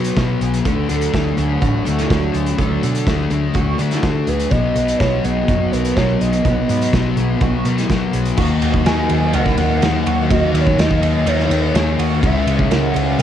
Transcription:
Already playing: B2 F#3 B3 D#4 F#4 B4
0.04 closed hi-hat
0.16 B2 F#3 B3, kick, snare, closed hi-hat
0.41 B1 G#4, closed hi-hat
0.53 closed hi-hat
0.65 D2 D3 F#3 A3 D4 F#4 A4, kick, closed hi-hat
0.89 D2 A3 D4 A4, closed hi-hat
1.01 closed hi-hat
1.13 D2 D3 A3 D4, kick, snare, closed hi-hat
1.37 D2 A3 D4 G#4, closed hi-hat
1.61 A1 F#4, kick, closed hi-hat
1.85 D2 A3 D4 A4, closed hi-hat
1.99 snare, closed hi-hat
2.10 D2 D3 A3 D4, kick, snare, closed hi-hat
2.34 D2 G#4, closed hi-hat
2.46 closed hi-hat
2.58 D2 D3 A3 D4 A4, kick, closed hi-hat
2.83 B2 A3 D4 A4, closed hi-hat
2.95 closed hi-hat
3.07 D2 D3 A3 D4, kick, snare, closed hi-hat
3.30 D2 A3 D4 G#4, closed hi-hat
3.54 D2 F#4, kick, closed hi-hat
3.78 D3 A3 D4 A4, closed hi-hat
3.91 snare, closed hi-hat
4.03 D3 A3 D4 A4, kick, snare, closed hi-hat
4.27 D2 G#4 B4, closed hi-hat
4.40 closed hi-hat
4.50 B1 B2 F#3 B3 D#4 F#4 B4 D#5, kick, closed hi-hat
4.75 B1 F#3 B3 B4, closed hi-hat
4.88 closed hi-hat
4.98 B1 B2 F#3 C#5, kick, snare, closed hi-hat
5.03 B3
5.24 B1 F#3 B3 G#4 D#5, closed hi-hat
5.48 F#1 F#4, kick, closed hi-hat
5.72 B1 F#3 B3 A#4 B4, closed hi-hat
5.84 closed hi-hat
5.95 B1 B2 F#3 B3 C#5, kick, snare, closed hi-hat
6.20 B1 G#4 D#5, closed hi-hat
6.33 closed hi-hat
6.45 B1 B2 F#3 B3 B4, kick, closed hi-hat
6.69 G#2 F#3 B3 B4, closed hi-hat
6.81 closed hi-hat
6.93 B1 B2 F#3 B3, kick, snare, closed hi-hat
7.17 B1 F#3 B3 G#4, closed hi-hat
7.41 B1 F#4, kick, closed hi-hat
7.65 B2 F#3 B3 A#4, closed hi-hat
7.78 snare, closed hi-hat
7.89 B2 F#3 B3, kick, snare, closed hi-hat
8.13 B1 G#4, closed hi-hat
8.25 closed hi-hat
8.37 D#2 D#3 F#3 A#3 D#4 F#4, kick, crash
8.62 D#2, ride
8.74 kick
8.86 D#2 D#3 A#3 D#4 A#4 G#5, snare, ride
9.10 D#2 G#4, ride
9.33 C#2 D#3 A#3 D#4 A#4 F#5, ride
9.46 kick, snare
9.57 D#2 A#3 D#4 F#5, ride
9.82 D#2 D#3 A#3 D#4 G#4, snare, ride
10.06 D#2 F#4, ride
10.30 D#2 D#3 A#3 D#4 F#4 D#5, kick, ride
10.54 D#2 C#5, ride
10.67 kick
10.78 D#2 D#3 A#3 D#4 A#4 D#5, snare, ride
10.91 kick
11.02 D#2 G#4, ride
11.26 D#2 D#3 A#3 D#4 A#4 C#5, ride
11.40 snare
11.50 D#2 A#3 D#4, ride
11.74 D#2 D#3 A#3 D#4 G#4, snare, ride
11.98 D#2 F#4, ride
12.23 C#2 C#3 G#3 C#4 E4 G#4 E5, kick, ride
12.47 C#2, ride
12.59 kick
12.71 C#2 C#3 G#3 C#4 A#4 F#5, snare, ride
12.94 C#2 G#4, ride
13.18 B1 C#3 A#4

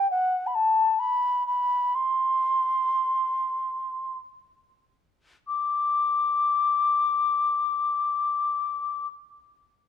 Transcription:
Already playing: G5
0.11 F#5
0.47 B5
0.55 A5
0.99 B5
1.47 B5
1.95 C6
5.47 D6

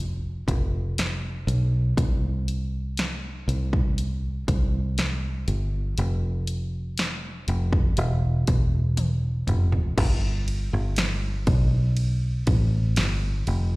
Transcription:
Already playing: F1
0.48 F1, kick, closed hi-hat
0.98 snare, closed hi-hat
1.47 B1, closed hi-hat
1.97 C2, kick, closed hi-hat
2.48 closed hi-hat
2.97 snare, closed hi-hat
3.48 C2, closed hi-hat
3.73 kick
3.98 closed hi-hat
4.48 C2, kick, closed hi-hat
4.98 snare, closed hi-hat
5.48 G1, closed hi-hat
5.98 F1, closed hi-hat
6.47 closed hi-hat
6.98 snare, closed hi-hat
7.48 F1, closed hi-hat
7.73 kick
7.97 E1, closed hi-hat
8.47 E1, kick, closed hi-hat
8.97 closed hi-hat, high tom
9.47 F1, closed hi-hat, mid tom
9.72 floor tom
9.98 G1, kick, crash, ride
10.48 ride
10.73 G1
10.96 snare, ride
11.47 B1, kick, ride
11.97 ride
12.47 A1, kick, ride
12.96 G1, snare, ride
13.47 F1, ride

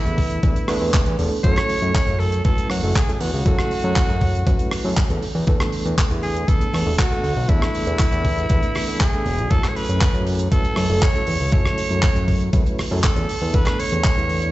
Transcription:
Already playing: E3 A3 B3 D4 E4 A4
0.06 E2, closed hi-hat
0.18 kick, open hi-hat
0.31 closed hi-hat
0.43 E2 E3 A3 B3 D4 B4, kick, closed hi-hat
0.56 closed hi-hat
0.68 E3 A3 B3 D4 B4, cross-stick, open hi-hat
0.81 E2
0.94 E1, kick, clap
1.06 E2, closed hi-hat
1.19 E1 E3 A3 B3 D4 A4, open hi-hat
1.43 F#2 F#3 A3 C#4 E4 A4 C#5, kick, closed hi-hat
1.57 cross-stick, clap
1.69 open hi-hat
1.82 F#2, closed hi-hat
1.94 kick, clap, closed hi-hat
2.07 F#2, closed hi-hat
2.20 A4, open hi-hat
2.32 closed hi-hat
2.45 F#3 A3 C#4 E4 A4 B4, kick, closed hi-hat
2.58 closed hi-hat
2.70 F#2 F#4, cross-stick, open hi-hat
2.83 F#1 F#3 A3 C#4 E4 A4
2.95 G#4, kick, clap, closed hi-hat
3.08 F#3 A3 C#4 E4 A4, closed hi-hat
3.14 G#4
3.21 E2 F#4, open hi-hat
3.34 C#2
3.45 F#2 F#3 A3 C#4 E4 A4, kick, closed hi-hat
3.59 cross-stick
3.71 open hi-hat
3.84 F#2
3.96 kick, clap, closed hi-hat
4.09 F#2, closed hi-hat
4.21 kick, open hi-hat
4.35 closed hi-hat
4.47 F#2 F#3 A3 C#4 E4 B4, kick, closed hi-hat
4.59 closed hi-hat
4.71 cross-stick, open hi-hat
4.84 F#2 F#3 A3 C#4 E4 A4
4.97 kick, clap, closed hi-hat
5.10 E2 F#3 A3 C#4 E4 A4, closed hi-hat
5.22 E2, open hi-hat
5.35 E2
5.47 E2 E3 A3 B3 D4 A4, kick, closed hi-hat
5.60 cross-stick, clap
5.72 open hi-hat
5.85 E2, closed hi-hat
5.98 kick, clap, closed hi-hat
6.10 E2, closed hi-hat
6.23 G#4, open hi-hat
6.36 closed hi-hat
6.48 E3 A3 B3 D4 A4 B4, kick, closed hi-hat
6.61 closed hi-hat
6.73 E2, cross-stick, open hi-hat
6.86 E1 E3 A3 B3 D4 A4
6.98 F#4, kick, clap, closed hi-hat
7.11 E3 A3 B3 D4 A4, closed hi-hat
7.24 D2, open hi-hat
7.37 B1
7.48 E2 E3 A3 B3 D4 E4 A4, kick, closed hi-hat
7.62 cross-stick
7.75 open hi-hat
7.87 E2, closed hi-hat
7.99 kick, clap, closed hi-hat
8.12 E2, closed hi-hat
8.25 kick, open hi-hat
8.38 closed hi-hat
8.49 E2 E3 A3 B3 D4 B4, kick, closed hi-hat
8.63 closed hi-hat
8.75 cross-stick, open hi-hat
8.87 E3 A3 B3 D4 A4
9.00 G#4, kick, clap, closed hi-hat
9.13 E3 A3 B3 D4 A4, closed hi-hat
9.26 E1, open hi-hat
9.38 B1, closed hi-hat
9.50 F#2 F#3 A3 C#4 E4 A4, kick, closed hi-hat
9.63 cross-stick, clap
9.69 C#5
9.76 B4, open hi-hat
9.89 F#2, closed hi-hat
10.01 kick, clap, closed hi-hat
10.14 F#2, closed hi-hat
10.27 open hi-hat
10.39 closed hi-hat
10.51 F#3 A3 C#4 E4 A4 B4, kick, closed hi-hat
10.64 closed hi-hat
10.76 F#2, cross-stick, open hi-hat
10.89 F#1 F#3 A3 C#4 E4 A4
11.02 C#5, kick, clap
11.14 F#3 A3 C#4 E4 A4, closed hi-hat
11.27 E2, open hi-hat
11.40 C#2
11.51 F#2 F#3 A3 C#4 E4 A4 C#5, kick, closed hi-hat
11.65 cross-stick
11.78 open hi-hat
11.90 F#2, closed hi-hat
12.03 kick, clap, closed hi-hat
12.16 F#2, closed hi-hat
12.28 kick, open hi-hat
12.41 closed hi-hat
12.53 F#2 F#3 A3 C#4 E4 B4, kick, closed hi-hat
12.66 closed hi-hat
12.79 cross-stick, open hi-hat
12.91 F#2 F#3 A3 C#4 E4 A4
13.04 A4, kick, clap
13.16 E2 F#3 A3 C#4 E4 A4, closed hi-hat
13.29 E2, open hi-hat
13.42 E2
13.53 E2 E3 A3 B3 D4 A4 B4, kick, closed hi-hat
13.66 cross-stick, clap
13.80 C#5, open hi-hat
13.92 E2, closed hi-hat
14.04 kick, clap, closed hi-hat
14.17 E2, closed hi-hat
14.29 open hi-hat
14.42 closed hi-hat

